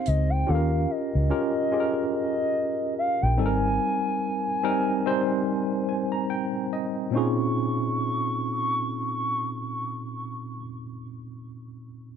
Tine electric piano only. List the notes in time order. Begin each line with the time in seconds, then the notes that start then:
Already playing: C4 D#4 G4 C5
0.47 C#4 F4 G4 A4
0.55 A#4
1.30 C#4 F4 G4 A#4
1.72 C#4 F4 G4 G#4
1.80 A#4
3.38 G3 C4 D#4 A4
3.46 A#4
4.63 G3 C4 D#4 A#4
5.06 G3 C4 D#4 C5
5.89 G#5
6.12 A#5
6.30 G5
6.73 D#5
7.11 A#2 C4 C#4
7.15 D#4 F4 G#4